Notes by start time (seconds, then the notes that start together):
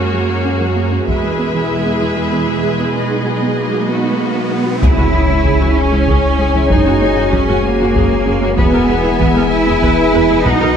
Already playing: F#2 G#3 A#3 C#4 F#4 G#4 A#4 C#5
0.14 F#3
0.29 A#3
0.45 C#4
0.61 F#3
0.76 A#3
0.92 C#4
1.07 E2 B2 E3 G#3 E4 G#4 B4 E5, taiko, riser
1.23 G#3
1.39 B3
1.55 E3
1.86 B3
2.02 E3
2.17 G#3
2.32 B3
2.49 E3
2.64 G#3
2.80 B3
2.95 B2 F#3 B3 D#4 D#5
3.11 D#4
3.26 F#4
3.42 B3
3.58 A#3
3.73 F#4
3.89 B3 F#4
4.05 D#4
4.20 F#4
4.35 B3
4.51 D#4
4.66 F#4
4.82 C#2 C#3 G#3 C#4 E4 G#4 C#5 G#5, taiko, impact
4.97 C#2 G#3 F#4
5.13 C#2 E3 G#4
5.29 C#2 C#4 E4
5.45 C#2 C#3 G#4, taiko
5.61 C#2 E3 F#4
5.77 C#4
5.92 C#2 G#3 E4
6.07 C#2 C#3 G#4, taiko
6.39 C#2 G#3 G#4
6.54 C#2 E3 E4
6.70 F#1 F#2 F#3 D#4 F#4 G#4, taiko
6.85 F#2 C#4 F#4
7.01 F#2 A#3 G#4
7.16 F#2 F#4
7.32 F#2 F#3 C#4 G#4, taiko
7.48 F#2 A#3 F#4
7.64 A#3
7.79 F#2 C#4 F#4
7.95 F#2 F#3 G#4, taiko
8.26 F#2 C#4 G#4
8.41 F#2 A#3 F#4
8.57 E1 E2 E3 B3 E4 G#4 B4 E5 G#5, taiko
8.72 E2 B3 A#4
8.88 E2 G#3 B4
9.04 E2 E4 G#4
9.19 E2 E3 B4, taiko
9.35 E2 G#3 A#4
9.52 E4
9.66 E2 B3 G#4
9.82 E2 E3 B4, taiko
10.13 E2 B3 B4
10.29 E2 G#3 G#4
10.45 B1 F#3 B3 D#4 F#4 B4 D#5 F#5, taiko
10.61 B1 F#4 A#4